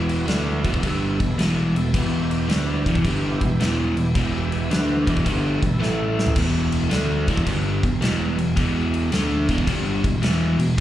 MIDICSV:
0, 0, Header, 1, 5, 480
1, 0, Start_track
1, 0, Key_signature, 1, "minor"
1, 0, Tempo, 552995
1, 1680, Time_signature, 4, 2, 24, 8
1, 9377, End_track
2, 0, Start_track
2, 0, Title_t, "Tonewheel organ"
2, 0, Program_c, 0, 16
2, 0, Note_on_c, 0, 59, 91
2, 0, Note_on_c, 0, 64, 81
2, 0, Note_on_c, 0, 66, 95
2, 617, Note_off_c, 0, 59, 0
2, 618, Note_off_c, 0, 64, 0
2, 620, Note_off_c, 0, 66, 0
2, 731, Note_on_c, 0, 59, 84
2, 731, Note_on_c, 0, 64, 84
2, 737, Note_on_c, 0, 69, 99
2, 1364, Note_off_c, 0, 59, 0
2, 1364, Note_off_c, 0, 64, 0
2, 1367, Note_off_c, 0, 69, 0
2, 1519, Note_on_c, 0, 64, 67
2, 1524, Note_on_c, 0, 59, 78
2, 1525, Note_on_c, 0, 69, 84
2, 1653, Note_off_c, 0, 64, 0
2, 1656, Note_off_c, 0, 59, 0
2, 1656, Note_off_c, 0, 69, 0
2, 1677, Note_on_c, 0, 59, 91
2, 1682, Note_on_c, 0, 64, 81
2, 1683, Note_on_c, 0, 67, 104
2, 2530, Note_off_c, 0, 59, 0
2, 2533, Note_off_c, 0, 64, 0
2, 2533, Note_off_c, 0, 67, 0
2, 2640, Note_on_c, 0, 67, 100
2, 2643, Note_on_c, 0, 59, 88
2, 2643, Note_on_c, 0, 64, 82
2, 3277, Note_off_c, 0, 67, 0
2, 3279, Note_off_c, 0, 59, 0
2, 3279, Note_off_c, 0, 64, 0
2, 3435, Note_on_c, 0, 64, 70
2, 3442, Note_on_c, 0, 59, 71
2, 3445, Note_on_c, 0, 67, 85
2, 3571, Note_off_c, 0, 64, 0
2, 3575, Note_off_c, 0, 59, 0
2, 3576, Note_off_c, 0, 67, 0
2, 3588, Note_on_c, 0, 59, 85
2, 3600, Note_on_c, 0, 67, 98
2, 3602, Note_on_c, 0, 64, 85
2, 4445, Note_off_c, 0, 59, 0
2, 4451, Note_off_c, 0, 67, 0
2, 4452, Note_off_c, 0, 64, 0
2, 4563, Note_on_c, 0, 64, 79
2, 4565, Note_on_c, 0, 69, 95
2, 4566, Note_on_c, 0, 59, 87
2, 5022, Note_off_c, 0, 64, 0
2, 5028, Note_off_c, 0, 69, 0
2, 5033, Note_on_c, 0, 64, 82
2, 5036, Note_on_c, 0, 57, 91
2, 5038, Note_on_c, 0, 69, 102
2, 5043, Note_off_c, 0, 59, 0
2, 5301, Note_off_c, 0, 64, 0
2, 5303, Note_off_c, 0, 57, 0
2, 5304, Note_off_c, 0, 69, 0
2, 5356, Note_on_c, 0, 57, 75
2, 5357, Note_on_c, 0, 64, 66
2, 5364, Note_on_c, 0, 72, 80
2, 5491, Note_off_c, 0, 57, 0
2, 5491, Note_off_c, 0, 64, 0
2, 5495, Note_off_c, 0, 72, 0
2, 9377, End_track
3, 0, Start_track
3, 0, Title_t, "Overdriven electric guitar"
3, 0, Program_c, 1, 29
3, 0, Note_on_c, 1, 40, 90
3, 0, Note_on_c, 1, 47, 99
3, 0, Note_on_c, 1, 52, 107
3, 234, Note_off_c, 1, 40, 0
3, 234, Note_off_c, 1, 47, 0
3, 235, Note_off_c, 1, 52, 0
3, 238, Note_on_c, 1, 50, 85
3, 238, Note_on_c, 1, 57, 93
3, 245, Note_on_c, 1, 62, 97
3, 549, Note_off_c, 1, 50, 0
3, 549, Note_off_c, 1, 57, 0
3, 552, Note_off_c, 1, 62, 0
3, 560, Note_on_c, 1, 40, 92
3, 565, Note_on_c, 1, 47, 101
3, 568, Note_on_c, 1, 52, 97
3, 712, Note_off_c, 1, 40, 0
3, 716, Note_off_c, 1, 47, 0
3, 716, Note_on_c, 1, 43, 95
3, 717, Note_off_c, 1, 52, 0
3, 719, Note_on_c, 1, 50, 97
3, 721, Note_on_c, 1, 55, 99
3, 1028, Note_off_c, 1, 43, 0
3, 1029, Note_off_c, 1, 50, 0
3, 1030, Note_off_c, 1, 55, 0
3, 1035, Note_on_c, 1, 40, 64
3, 1039, Note_on_c, 1, 47, 74
3, 1166, Note_off_c, 1, 40, 0
3, 1168, Note_off_c, 1, 47, 0
3, 1198, Note_on_c, 1, 40, 98
3, 1202, Note_on_c, 1, 47, 95
3, 1209, Note_on_c, 1, 52, 103
3, 1509, Note_off_c, 1, 40, 0
3, 1511, Note_off_c, 1, 47, 0
3, 1514, Note_off_c, 1, 52, 0
3, 1523, Note_on_c, 1, 40, 65
3, 1526, Note_on_c, 1, 47, 73
3, 1650, Note_off_c, 1, 40, 0
3, 1652, Note_off_c, 1, 47, 0
3, 1681, Note_on_c, 1, 40, 90
3, 1685, Note_on_c, 1, 47, 98
3, 1686, Note_on_c, 1, 52, 107
3, 2155, Note_off_c, 1, 47, 0
3, 2156, Note_off_c, 1, 40, 0
3, 2158, Note_off_c, 1, 52, 0
3, 2159, Note_on_c, 1, 50, 82
3, 2161, Note_on_c, 1, 57, 84
3, 2164, Note_on_c, 1, 62, 104
3, 2469, Note_off_c, 1, 50, 0
3, 2470, Note_off_c, 1, 57, 0
3, 2472, Note_off_c, 1, 62, 0
3, 2484, Note_on_c, 1, 40, 94
3, 2488, Note_on_c, 1, 47, 96
3, 2489, Note_on_c, 1, 52, 103
3, 2638, Note_off_c, 1, 40, 0
3, 2640, Note_off_c, 1, 47, 0
3, 2640, Note_off_c, 1, 52, 0
3, 2649, Note_on_c, 1, 43, 93
3, 2649, Note_on_c, 1, 50, 102
3, 2652, Note_on_c, 1, 55, 100
3, 2954, Note_off_c, 1, 43, 0
3, 2954, Note_off_c, 1, 50, 0
3, 2955, Note_off_c, 1, 55, 0
3, 2966, Note_on_c, 1, 40, 64
3, 2970, Note_on_c, 1, 47, 75
3, 3091, Note_off_c, 1, 40, 0
3, 3093, Note_off_c, 1, 47, 0
3, 3122, Note_on_c, 1, 40, 102
3, 3124, Note_on_c, 1, 47, 96
3, 3130, Note_on_c, 1, 52, 111
3, 3428, Note_off_c, 1, 40, 0
3, 3432, Note_off_c, 1, 47, 0
3, 3434, Note_off_c, 1, 52, 0
3, 3438, Note_on_c, 1, 40, 67
3, 3442, Note_on_c, 1, 47, 70
3, 3567, Note_off_c, 1, 40, 0
3, 3569, Note_off_c, 1, 47, 0
3, 3602, Note_on_c, 1, 40, 97
3, 3607, Note_on_c, 1, 47, 101
3, 3608, Note_on_c, 1, 52, 105
3, 4076, Note_off_c, 1, 40, 0
3, 4078, Note_off_c, 1, 47, 0
3, 4079, Note_off_c, 1, 52, 0
3, 4084, Note_on_c, 1, 50, 83
3, 4086, Note_on_c, 1, 57, 83
3, 4090, Note_on_c, 1, 62, 103
3, 4391, Note_off_c, 1, 50, 0
3, 4391, Note_on_c, 1, 40, 93
3, 4392, Note_off_c, 1, 57, 0
3, 4394, Note_off_c, 1, 62, 0
3, 4395, Note_on_c, 1, 47, 102
3, 4400, Note_on_c, 1, 52, 104
3, 4551, Note_off_c, 1, 40, 0
3, 4553, Note_off_c, 1, 47, 0
3, 4555, Note_off_c, 1, 52, 0
3, 4557, Note_on_c, 1, 43, 88
3, 4561, Note_on_c, 1, 50, 109
3, 4564, Note_on_c, 1, 55, 105
3, 4867, Note_off_c, 1, 43, 0
3, 4869, Note_off_c, 1, 50, 0
3, 4871, Note_off_c, 1, 55, 0
3, 4876, Note_on_c, 1, 40, 62
3, 4882, Note_on_c, 1, 47, 69
3, 5006, Note_off_c, 1, 40, 0
3, 5009, Note_off_c, 1, 47, 0
3, 5031, Note_on_c, 1, 45, 98
3, 5035, Note_on_c, 1, 52, 102
3, 5040, Note_on_c, 1, 57, 96
3, 5510, Note_off_c, 1, 45, 0
3, 5512, Note_off_c, 1, 52, 0
3, 5514, Note_off_c, 1, 57, 0
3, 5516, Note_on_c, 1, 40, 93
3, 5519, Note_on_c, 1, 47, 104
3, 5522, Note_on_c, 1, 52, 98
3, 5987, Note_off_c, 1, 47, 0
3, 5990, Note_on_c, 1, 50, 90
3, 5992, Note_off_c, 1, 40, 0
3, 5993, Note_off_c, 1, 52, 0
3, 5996, Note_on_c, 1, 57, 86
3, 5998, Note_on_c, 1, 62, 92
3, 6304, Note_off_c, 1, 50, 0
3, 6306, Note_off_c, 1, 57, 0
3, 6307, Note_off_c, 1, 62, 0
3, 6314, Note_on_c, 1, 40, 93
3, 6320, Note_on_c, 1, 47, 88
3, 6323, Note_on_c, 1, 52, 98
3, 6471, Note_off_c, 1, 40, 0
3, 6474, Note_off_c, 1, 47, 0
3, 6475, Note_on_c, 1, 43, 100
3, 6476, Note_off_c, 1, 52, 0
3, 6478, Note_on_c, 1, 50, 98
3, 6484, Note_on_c, 1, 55, 102
3, 6786, Note_off_c, 1, 43, 0
3, 6787, Note_off_c, 1, 50, 0
3, 6790, Note_off_c, 1, 55, 0
3, 6798, Note_on_c, 1, 40, 62
3, 6803, Note_on_c, 1, 47, 75
3, 6926, Note_off_c, 1, 40, 0
3, 6929, Note_off_c, 1, 47, 0
3, 6953, Note_on_c, 1, 40, 99
3, 6955, Note_on_c, 1, 47, 113
3, 6957, Note_on_c, 1, 52, 113
3, 7263, Note_off_c, 1, 40, 0
3, 7266, Note_off_c, 1, 47, 0
3, 7267, Note_off_c, 1, 52, 0
3, 7273, Note_on_c, 1, 40, 65
3, 7275, Note_on_c, 1, 47, 68
3, 7404, Note_off_c, 1, 40, 0
3, 7405, Note_off_c, 1, 47, 0
3, 7433, Note_on_c, 1, 47, 106
3, 7434, Note_on_c, 1, 40, 92
3, 7439, Note_on_c, 1, 52, 108
3, 7911, Note_off_c, 1, 40, 0
3, 7911, Note_off_c, 1, 47, 0
3, 7914, Note_off_c, 1, 52, 0
3, 7914, Note_on_c, 1, 50, 87
3, 7921, Note_on_c, 1, 57, 92
3, 7921, Note_on_c, 1, 62, 103
3, 8226, Note_off_c, 1, 50, 0
3, 8230, Note_off_c, 1, 57, 0
3, 8230, Note_off_c, 1, 62, 0
3, 8238, Note_on_c, 1, 40, 94
3, 8240, Note_on_c, 1, 47, 97
3, 8246, Note_on_c, 1, 52, 100
3, 8391, Note_off_c, 1, 40, 0
3, 8395, Note_off_c, 1, 47, 0
3, 8395, Note_on_c, 1, 43, 98
3, 8397, Note_off_c, 1, 52, 0
3, 8399, Note_on_c, 1, 50, 101
3, 8400, Note_on_c, 1, 55, 108
3, 8707, Note_off_c, 1, 43, 0
3, 8709, Note_off_c, 1, 50, 0
3, 8709, Note_off_c, 1, 55, 0
3, 8715, Note_on_c, 1, 40, 73
3, 8723, Note_on_c, 1, 47, 71
3, 8846, Note_off_c, 1, 40, 0
3, 8850, Note_off_c, 1, 47, 0
3, 8869, Note_on_c, 1, 40, 95
3, 8874, Note_on_c, 1, 47, 103
3, 8876, Note_on_c, 1, 52, 111
3, 9181, Note_off_c, 1, 40, 0
3, 9183, Note_off_c, 1, 47, 0
3, 9188, Note_off_c, 1, 52, 0
3, 9191, Note_on_c, 1, 40, 65
3, 9194, Note_on_c, 1, 47, 71
3, 9324, Note_off_c, 1, 40, 0
3, 9326, Note_off_c, 1, 47, 0
3, 9377, End_track
4, 0, Start_track
4, 0, Title_t, "Picked electric bass"
4, 0, Program_c, 2, 34
4, 0, Note_on_c, 2, 28, 98
4, 208, Note_off_c, 2, 28, 0
4, 240, Note_on_c, 2, 38, 93
4, 537, Note_off_c, 2, 38, 0
4, 558, Note_on_c, 2, 28, 89
4, 709, Note_off_c, 2, 28, 0
4, 723, Note_on_c, 2, 31, 88
4, 1018, Note_off_c, 2, 31, 0
4, 1042, Note_on_c, 2, 28, 78
4, 1191, Note_off_c, 2, 28, 0
4, 1209, Note_on_c, 2, 28, 94
4, 1502, Note_off_c, 2, 28, 0
4, 1521, Note_on_c, 2, 28, 78
4, 1670, Note_off_c, 2, 28, 0
4, 1682, Note_on_c, 2, 28, 95
4, 2128, Note_off_c, 2, 28, 0
4, 2157, Note_on_c, 2, 38, 96
4, 2455, Note_off_c, 2, 38, 0
4, 2482, Note_on_c, 2, 28, 95
4, 2630, Note_off_c, 2, 28, 0
4, 2643, Note_on_c, 2, 31, 92
4, 2938, Note_off_c, 2, 31, 0
4, 2963, Note_on_c, 2, 28, 84
4, 3111, Note_off_c, 2, 28, 0
4, 3119, Note_on_c, 2, 28, 99
4, 3416, Note_off_c, 2, 28, 0
4, 3435, Note_on_c, 2, 28, 75
4, 3586, Note_off_c, 2, 28, 0
4, 3604, Note_on_c, 2, 28, 96
4, 4049, Note_off_c, 2, 28, 0
4, 4081, Note_on_c, 2, 38, 99
4, 4377, Note_off_c, 2, 38, 0
4, 4402, Note_on_c, 2, 28, 89
4, 4550, Note_off_c, 2, 28, 0
4, 4563, Note_on_c, 2, 31, 98
4, 4858, Note_off_c, 2, 31, 0
4, 4882, Note_on_c, 2, 28, 83
4, 5030, Note_off_c, 2, 28, 0
4, 5040, Note_on_c, 2, 33, 96
4, 5486, Note_off_c, 2, 33, 0
4, 5517, Note_on_c, 2, 28, 93
4, 5964, Note_off_c, 2, 28, 0
4, 6008, Note_on_c, 2, 38, 95
4, 6300, Note_off_c, 2, 38, 0
4, 6317, Note_on_c, 2, 28, 99
4, 6467, Note_off_c, 2, 28, 0
4, 6482, Note_on_c, 2, 31, 95
4, 6777, Note_off_c, 2, 31, 0
4, 6799, Note_on_c, 2, 28, 79
4, 6948, Note_off_c, 2, 28, 0
4, 6962, Note_on_c, 2, 28, 101
4, 7257, Note_off_c, 2, 28, 0
4, 7280, Note_on_c, 2, 28, 78
4, 7428, Note_off_c, 2, 28, 0
4, 7438, Note_on_c, 2, 28, 100
4, 7885, Note_off_c, 2, 28, 0
4, 7918, Note_on_c, 2, 38, 99
4, 8215, Note_off_c, 2, 38, 0
4, 8235, Note_on_c, 2, 28, 102
4, 8386, Note_off_c, 2, 28, 0
4, 8397, Note_on_c, 2, 31, 104
4, 8695, Note_off_c, 2, 31, 0
4, 8716, Note_on_c, 2, 28, 84
4, 8867, Note_off_c, 2, 28, 0
4, 8874, Note_on_c, 2, 28, 102
4, 9174, Note_off_c, 2, 28, 0
4, 9194, Note_on_c, 2, 28, 79
4, 9346, Note_off_c, 2, 28, 0
4, 9377, End_track
5, 0, Start_track
5, 0, Title_t, "Drums"
5, 80, Note_on_c, 9, 49, 61
5, 167, Note_off_c, 9, 49, 0
5, 241, Note_on_c, 9, 49, 81
5, 256, Note_on_c, 9, 38, 109
5, 328, Note_off_c, 9, 49, 0
5, 343, Note_off_c, 9, 38, 0
5, 558, Note_on_c, 9, 49, 61
5, 560, Note_on_c, 9, 36, 81
5, 641, Note_off_c, 9, 36, 0
5, 641, Note_on_c, 9, 36, 93
5, 645, Note_off_c, 9, 49, 0
5, 722, Note_off_c, 9, 36, 0
5, 722, Note_on_c, 9, 36, 95
5, 722, Note_on_c, 9, 49, 80
5, 809, Note_off_c, 9, 36, 0
5, 809, Note_off_c, 9, 49, 0
5, 1043, Note_on_c, 9, 36, 85
5, 1044, Note_on_c, 9, 49, 60
5, 1129, Note_off_c, 9, 36, 0
5, 1131, Note_off_c, 9, 49, 0
5, 1205, Note_on_c, 9, 49, 86
5, 1221, Note_on_c, 9, 38, 109
5, 1292, Note_off_c, 9, 49, 0
5, 1308, Note_off_c, 9, 38, 0
5, 1529, Note_on_c, 9, 49, 62
5, 1616, Note_off_c, 9, 49, 0
5, 1685, Note_on_c, 9, 36, 103
5, 1686, Note_on_c, 9, 49, 81
5, 1771, Note_off_c, 9, 36, 0
5, 1773, Note_off_c, 9, 49, 0
5, 2005, Note_on_c, 9, 49, 64
5, 2091, Note_off_c, 9, 49, 0
5, 2166, Note_on_c, 9, 49, 76
5, 2181, Note_on_c, 9, 38, 110
5, 2252, Note_off_c, 9, 49, 0
5, 2268, Note_off_c, 9, 38, 0
5, 2484, Note_on_c, 9, 36, 81
5, 2490, Note_on_c, 9, 49, 62
5, 2564, Note_off_c, 9, 36, 0
5, 2564, Note_on_c, 9, 36, 90
5, 2577, Note_off_c, 9, 49, 0
5, 2644, Note_off_c, 9, 36, 0
5, 2644, Note_on_c, 9, 36, 91
5, 2644, Note_on_c, 9, 49, 78
5, 2731, Note_off_c, 9, 36, 0
5, 2731, Note_off_c, 9, 49, 0
5, 2962, Note_on_c, 9, 36, 82
5, 2964, Note_on_c, 9, 49, 58
5, 3049, Note_off_c, 9, 36, 0
5, 3051, Note_off_c, 9, 49, 0
5, 3129, Note_on_c, 9, 49, 78
5, 3145, Note_on_c, 9, 38, 111
5, 3216, Note_off_c, 9, 49, 0
5, 3231, Note_off_c, 9, 38, 0
5, 3445, Note_on_c, 9, 49, 58
5, 3532, Note_off_c, 9, 49, 0
5, 3605, Note_on_c, 9, 36, 107
5, 3608, Note_on_c, 9, 49, 76
5, 3692, Note_off_c, 9, 36, 0
5, 3695, Note_off_c, 9, 49, 0
5, 3923, Note_on_c, 9, 49, 61
5, 4010, Note_off_c, 9, 49, 0
5, 4089, Note_on_c, 9, 49, 77
5, 4105, Note_on_c, 9, 38, 110
5, 4176, Note_off_c, 9, 49, 0
5, 4192, Note_off_c, 9, 38, 0
5, 4404, Note_on_c, 9, 36, 84
5, 4408, Note_on_c, 9, 49, 61
5, 4485, Note_off_c, 9, 36, 0
5, 4485, Note_on_c, 9, 36, 83
5, 4495, Note_off_c, 9, 49, 0
5, 4566, Note_off_c, 9, 36, 0
5, 4566, Note_on_c, 9, 36, 95
5, 4570, Note_on_c, 9, 49, 78
5, 4653, Note_off_c, 9, 36, 0
5, 4657, Note_off_c, 9, 49, 0
5, 4883, Note_on_c, 9, 36, 87
5, 4884, Note_on_c, 9, 49, 59
5, 4970, Note_off_c, 9, 36, 0
5, 4970, Note_off_c, 9, 49, 0
5, 5060, Note_on_c, 9, 38, 65
5, 5147, Note_off_c, 9, 38, 0
5, 5376, Note_on_c, 9, 38, 91
5, 5439, Note_on_c, 9, 43, 95
5, 5462, Note_off_c, 9, 38, 0
5, 5519, Note_on_c, 9, 49, 80
5, 5519, Note_on_c, 9, 57, 116
5, 5521, Note_on_c, 9, 36, 108
5, 5525, Note_off_c, 9, 43, 0
5, 5605, Note_off_c, 9, 49, 0
5, 5605, Note_off_c, 9, 57, 0
5, 5608, Note_off_c, 9, 36, 0
5, 5835, Note_on_c, 9, 49, 67
5, 5922, Note_off_c, 9, 49, 0
5, 5998, Note_on_c, 9, 49, 82
5, 6014, Note_on_c, 9, 38, 108
5, 6085, Note_off_c, 9, 49, 0
5, 6101, Note_off_c, 9, 38, 0
5, 6317, Note_on_c, 9, 49, 64
5, 6320, Note_on_c, 9, 36, 82
5, 6401, Note_off_c, 9, 36, 0
5, 6401, Note_on_c, 9, 36, 93
5, 6404, Note_off_c, 9, 49, 0
5, 6481, Note_off_c, 9, 36, 0
5, 6481, Note_on_c, 9, 36, 98
5, 6481, Note_on_c, 9, 49, 86
5, 6568, Note_off_c, 9, 36, 0
5, 6568, Note_off_c, 9, 49, 0
5, 6800, Note_on_c, 9, 36, 86
5, 6800, Note_on_c, 9, 49, 60
5, 6886, Note_off_c, 9, 49, 0
5, 6887, Note_off_c, 9, 36, 0
5, 6962, Note_on_c, 9, 49, 79
5, 6978, Note_on_c, 9, 38, 116
5, 7049, Note_off_c, 9, 49, 0
5, 7064, Note_off_c, 9, 38, 0
5, 7278, Note_on_c, 9, 49, 63
5, 7365, Note_off_c, 9, 49, 0
5, 7437, Note_on_c, 9, 49, 81
5, 7439, Note_on_c, 9, 36, 103
5, 7524, Note_off_c, 9, 49, 0
5, 7526, Note_off_c, 9, 36, 0
5, 7758, Note_on_c, 9, 49, 63
5, 7844, Note_off_c, 9, 49, 0
5, 7916, Note_on_c, 9, 49, 77
5, 7932, Note_on_c, 9, 38, 108
5, 8003, Note_off_c, 9, 49, 0
5, 8019, Note_off_c, 9, 38, 0
5, 8235, Note_on_c, 9, 49, 65
5, 8236, Note_on_c, 9, 36, 79
5, 8317, Note_off_c, 9, 36, 0
5, 8317, Note_on_c, 9, 36, 89
5, 8321, Note_off_c, 9, 49, 0
5, 8395, Note_on_c, 9, 49, 85
5, 8397, Note_off_c, 9, 36, 0
5, 8397, Note_on_c, 9, 36, 102
5, 8482, Note_off_c, 9, 49, 0
5, 8483, Note_off_c, 9, 36, 0
5, 8717, Note_on_c, 9, 36, 90
5, 8718, Note_on_c, 9, 49, 66
5, 8804, Note_off_c, 9, 36, 0
5, 8804, Note_off_c, 9, 49, 0
5, 8877, Note_on_c, 9, 49, 90
5, 8892, Note_on_c, 9, 38, 120
5, 8964, Note_off_c, 9, 49, 0
5, 8979, Note_off_c, 9, 38, 0
5, 9197, Note_on_c, 9, 49, 69
5, 9283, Note_off_c, 9, 49, 0
5, 9377, End_track
0, 0, End_of_file